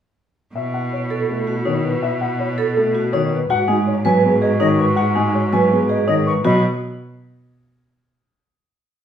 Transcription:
0.55 B2 E4 E5
0.74 F#5
0.93 C#5
1.10 A4
1.29 A3 A4
1.47 F#4
1.65 D#3 D#4 C#5
1.84 B4
2.03 E5
2.21 F#5
2.40 C#5
2.58 A4
2.77 A3 A4
2.95 F#4
3.13 D#3 D#4 C#5
3.32 B4
3.50 G#2 F#4 F#5
3.68 G#3 D#4 G#5
3.87 C#5
4.05 F#3 B4 G#5
4.24 B3 G#4
4.41 G#4 D#5
4.60 D#3 D#4 C#5 D#5
4.78 B4 C#6
4.96 F#4 F#5
5.15 G#3 D#4 G#5
5.34 C#5
5.53 F#3 B4 G#5
5.71 B3 G#4
5.89 G#4 D#5
6.07 D#3 D#4 C#5 D#5
6.26 B4 C#6
6.44 B2 F#3 F#4 D#5 B5

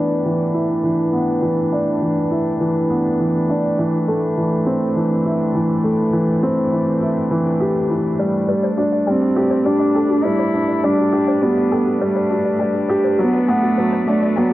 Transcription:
Already playing: E3 A3 B3 D4 B4 G5
0.10 shaker
0.25 E3, shaker
0.40 shaker
0.54 E4, shaker
0.84 E3, shaker
0.99 shaker
1.13 B3, shaker
1.28 shaker
1.42 E3, shaker
1.57 shaker
1.72 D4, shaker
1.87 shaker
2.02 E3, shaker
2.17 shaker
2.31 E4, shaker
2.47 shaker
2.61 E3, shaker
2.76 shaker
2.90 B3, shaker
3.05 shaker
3.20 E3, shaker
3.34 shaker
3.49 D4, shaker
3.63 shaker
3.78 E3, shaker
3.93 shaker
4.07 A3, shaker
4.22 shaker
4.38 E3, shaker
4.52 shaker
4.66 C4, shaker
4.81 shaker
4.96 E3, shaker
5.11 shaker
5.25 E4, shaker
5.41 shaker
5.55 E3, shaker
5.71 shaker
5.84 A3, shaker
5.99 shaker
6.13 E3, shaker
6.29 shaker
6.43 C4, shaker
6.58 shaker
6.72 E3, shaker
6.87 shaker
7.02 E4, shaker
7.17 shaker
7.31 E3, shaker
7.47 shaker
7.60 G4, shaker
7.76 shaker
7.90 E3, shaker
8.05 shaker
8.19 G3, shaker
8.34 shaker
8.48 G3 B4, shaker
8.54 D4
8.63 C5, shaker
8.77 D4 F#4, shaker
8.92 D5, shaker
9.07 G3 C4 G5, shaker
9.21 F#4, shaker
9.36 G4 B4, shaker
9.51 C5, shaker
9.65 G3 D4 F#4, shaker
9.79 D5, shaker
9.95 A4 G5, shaker
10.09 F#4, shaker
10.24 G3 E4 B4, shaker
10.38 C5, shaker
10.54 D4 F#4, shaker
10.69 D5, shaker
10.83 G3 D4 G5, shaker
10.98 F#4, shaker
11.13 G4 B4, shaker
11.27 C5, shaker
11.42 G3 B3 F#4, shaker
11.57 D5, shaker
11.72 A4 G5, shaker
11.87 F#4, shaker
12.01 G3 A3 B4, shaker
12.16 C5, shaker
12.30 D4 F#4, shaker
12.45 D5, shaker
12.59 G3 G5, shaker
12.74 F#4, shaker
12.88 G4 B4, shaker
13.04 C5, shaker
13.18 F#3 B3 F#4, shaker
13.34 D5, shaker
13.48 A3 B3 G5, shaker
13.62 F#4, shaker
13.77 F#3 B4, shaker
13.93 B4, shaker
14.07 A3 D4 F#4, shaker
14.22 D5, shaker
14.36 F#3 B3 G5, shaker

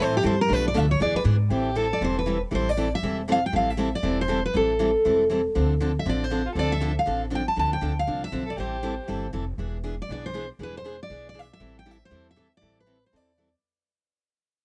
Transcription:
0.00 A2 E3 G3 C4 E4 A4 C5
0.17 G4
0.23 G2 E3 G3 C4 E4 A4 C5
0.41 A#4
0.48 B1 B2 F3 A3 D4 A4
0.53 B4
0.68 D5
0.74 D2 B2 F3 A3 D4 A4 E5
0.91 C#5
1.00 E2 E3 B3 D4 G#4 D5
1.14 B4, muted upright bass stroke
1.24 G#2 E3 B3 D4 G#4
1.50 A1 E3 G3 C4 E4 G4 A4
1.75 E3 G3 C4 E4 A4
1.93 D5
2.01 E1 E3 G3 C4 E4 A4 C5
2.19 B4
2.26 E3 G3 C4 E4 A4
2.51 A1 E3 G3 C4 E4 A4
2.55 C5
2.69 D5
2.77 E3 G3 C4 E4 A4
2.95 E5
3.03 E1 E3 G3 C4 E4 A4
3.28 E3 G3 C4 E4 A4
3.32 F5
3.46 G5
3.52 A1 E3 G3 C4 E4 A4 F5
3.70 E5
3.77 E3 G3 C4 E4 A4
3.95 D5
4.03 E1 E3 G3 C4 E4 A4
4.21 C5
4.28 E3 G3 C4 E4 A4
4.46 B4
4.54 A1 E3 G3 C4 E4 A4
4.79 E3 G3 C4 E4 A4
5.05 E1 E3 G3 C4 E4 A4
5.30 E3 G3 C4 E4 A4
5.55 D2 D3 F3 C4 D4 A4
5.80 D3 F3 C4 D4 A4
5.99 E5
6.05 A1 D3 F3 C4 D4 A4
6.09 D5
6.24 C5
6.30 D3 F3 C4 D4 A4
6.46 F4
6.55 D2 D3 F3 C4 D4 A4
6.59 D5
6.72 E5
6.80 D3 F3 C4 D4 A4
6.99 F5
7.06 A1 D3 F3 C4 D4 A4
7.30 D3 F3 C4 D4 A4
7.35 G5
7.48 A5
7.56 D2 D3 F3 C4 D4 A4 A5
7.73 G5
7.81 D2 D3 F3 C4 D4 A4
7.99 F5
8.07 C2 D3 F3 C4 D4 A4
8.24 E5
8.32 B1 D3 F3 C4 D4 A4
8.46 A4 D5
8.57 A1 E3 G3 C4 E4 G4 A4 C5
8.83 E3 G3 C4 E4 A4
9.08 G1 E3 G3 C4 E4 A4
9.33 F1 E3 G3 C4 E4 A4
9.58 E1 E3 B3 D4 G#4
9.84 E3 B3 D4 G#4
10.02 D5
10.09 B1 E3 B3 D4 G#4 D5
10.26 C5
10.34 E3 B3 D4 G#4
10.59 E1 E3 B3 D4 G#4
10.63 B4
10.77 C5
10.84 E3 B3 D4 G#4
11.03 D5
11.10 B1 E3 B3 D4 G#4
11.29 D5
11.34 E3 B3 D4 G#4
11.39 E5
11.53 E5
11.60 A1 E3 G3 C4 E4 A4
11.79 G5
11.86 E3 G3 C4 E4 A4
11.91 E5
12.05 C5
12.11 E2 E3 G3 C4 E4 A4
12.31 E5
12.36 E3 G3 C4 E4 A4
12.57 D5
12.61 A1 E3 G3 C4 E4 A4
12.80 B4
12.86 E3 G3 C4 E4 A4
13.06 C5
13.12 E2 E3 G3 C4 E4 A4 D5
13.38 E3 G3 C4 E4 A4

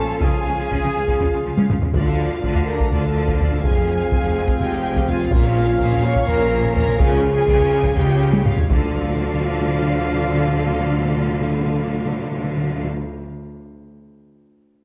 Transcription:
Already playing: F3 C#4 F4 A4 F5 A5
0.09 A#2 A#3
0.21 C#2 C#3 C#4 G#4 F5 G#5, taiko
0.46 C#2 C#3 G#3
0.58 C#3 F3
0.70 C#2 C#3 C#4, taiko
0.83 C#3 F3
0.95 C#2 C#3 G#3
1.08 C#3 C#4, taiko
1.20 C#2 C#3 F3, taiko low
1.33 C#3 G#3
1.46 C#2 C#3 F3
1.58 C#3 C#4, taiko high
1.70 C#2 C#3 F3, taiko low-mid
1.82 C#3 G#3, taiko low
1.94 D2 D3 F3 D4 F4 D5 F5, taiko
2.06 A3 D4 F5
2.18 F3 F4 D5
2.30 A3 D4 F5
2.42 D2 D3 F3 F4 D5, taiko
2.54 A3 D4 F5, taiko low
2.66 F3 F4 A#4 D5 A#5
2.78 A3 D4 F5, taiko
2.90 D2 D3 F3 F4 A4 D5 A5, taiko low
3.03 A3 D4 F5
3.15 F3 F4 D5
3.27 A3 D4 F5, taiko
3.38 F3 F4 A4 D5 A5, taiko low
3.50 A3 D4 F5, taiko low
3.62 F1 F2 G#3 C4 F4 G#4 G#5, taiko
3.74 F3 G#4 F5
3.87 G#3 F4 G#5
4.00 F3 G#4 F5
4.10 F1 F2 G#3 F4 G#5, taiko
4.23 F3 G#4 F5, taiko low
4.35 G#3 F4 G#5
4.47 F3 G#4 F5, taiko
4.59 F1 F2 G#3 F4 G4 G5 G#5, taiko low
4.71 F3 G#4 F5
4.84 G#3 F4 G#5
4.96 F3 G#4 F5, taiko
5.07 G#3 F4 F5 G#5, taiko low
5.20 F3 G#4 F5, taiko low
5.31 A#1 A#2 F3 A#3 C#4 F4 A#4 F5, taiko
5.44 F3 C#4 C#5
5.56 A#3 F4 A#4
5.67 F3 C#4 C#5
5.78 A#1 A#2 A#3 F4 A#4, taiko
5.91 F3 C#4 C#5, taiko low
6.01 A#3 F4 A#4 C#5 C#6
6.14 F3 C#4 C#5, taiko
6.25 A#1 A#2 A#3 F4 A#4 A#5, taiko low
6.37 F3 C#4 C#5
6.49 A#3 F4 A#4
6.62 F3 C#4 C#5, taiko
6.73 A#3 F4 A#4 A#5, taiko low
6.85 F3 C#4 C#5, taiko low
6.97 C#2 C#3 G#3 F4 G#4 F5 G#5, taiko
7.09 F3 G#4 C#5
7.22 G#3 F4 F5
7.33 F3 G#4 C#5
7.46 C#2 C#3 G#3 F4 F5, taiko
7.58 F3 G#4 C#5, taiko low
7.71 G#3 F4 F5
7.83 F3 G#4 C#5, taiko
7.96 C#2 C#3 G#3 F4 G4 F5 G5, taiko low
8.08 F3 G#4 C#5
8.19 G#3 F4 F5
8.33 F3 G#4 C#5, taiko high
8.44 G#3 F4 F5, taiko low-mid
8.57 F3 G#4 C#5, taiko low
8.69 D2 D3 F3 D4 F4 A4 D5 F5, taiko
8.77 D3
8.84 D3
8.90 D3
8.97 D3
9.03 D3
9.09 D3
9.15 D3
9.21 D3
9.28 D3
9.34 D3
9.41 D3
9.47 D3
9.54 D3
9.61 D3
9.68 D3
9.75 D3
9.81 D3
9.87 D3
9.94 D3
10.00 D3
10.07 D3
10.14 D3
10.21 D3
10.27 D3
10.34 D3
10.41 D3
10.47 D3
10.53 D3
10.60 D3
10.66 D3
10.72 D3
10.79 D3
10.85 D3
10.91 D3
10.98 D3
11.04 D3
11.10 D3
11.16 D3
11.22 D3
11.28 D3
11.34 D3
11.40 D3
11.46 D3
11.53 D3
11.59 D3
11.66 D3
11.73 D3
11.79 D3
11.86 D3
11.93 D3
11.99 D3
12.05 D3
12.12 D3
12.18 D3
12.25 D3
12.31 D3
12.38 D3
12.44 D3
12.50 D3
12.57 D3
12.64 D3
12.70 D3
12.77 D3
12.83 D3

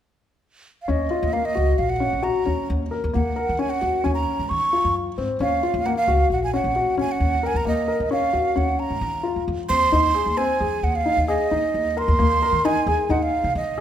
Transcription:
0.82 F5
0.88 D#2 C#4 D#5
1.11 F4
1.23 D#2
1.33 A#3 F5
1.45 D#5
1.55 C#2 F#4
1.78 A#1 F5
1.90 F#5
2.00 C#4
2.13 A#1
2.23 F#4 A#5
2.46 D#2 C#4
2.70 D#2
2.91 A#4
3.04 D#2
3.13 D#2 A#3 F#5
3.36 A#4
3.49 D#3
3.59 C#4 G#5
3.70 F#5
3.81 D#2 F#4
4.04 D#2 C#4 G#5
4.15 A#5
4.39 G#2
4.49 D#3 C#6
4.73 F4
4.85 F#2
5.18 G#2 C4
5.40 D#2 C#4 F5
5.63 F4
5.74 D#2
5.86 A#3 F#5
5.97 F5
6.08 C#2 F#4
6.30 A#1 F#5
6.44 G#5
6.54 C#4 F#5
6.64 A#1
6.76 F#4
6.97 D#2 C#4 G#5
7.12 F#5
7.20 D#2
7.43 A#4 G#5
7.54 D#2 A#5
7.65 D#2 A#3 D#5
7.88 A#4
8.00 D#3
8.11 C#4 F5
8.33 D#2 F#4
8.56 D#2 C#4 F#5
8.79 A#5
8.90 G#2
9.01 D#3
9.23 F4
9.36 F#2
9.48 F2
9.69 D#2 C4 C6
9.92 D#2 D#4
10.15 G#4
10.26 D#2
10.37 C4 G#5
10.60 F2 G#4
10.83 D#2 F#5
10.96 F5
11.06 D#4
11.17 D#2
11.28 G#4 D#5
11.51 D#2 D#4
11.74 D#2
11.97 A#4 C6
12.08 D#2
12.19 D#2 A#3
12.42 A#4
12.52 D#3
12.65 D#4 G#5
12.87 D#2 G#4
13.09 D#2 D#4 F#5
13.23 F5
13.44 C3
13.55 D#3 D#5

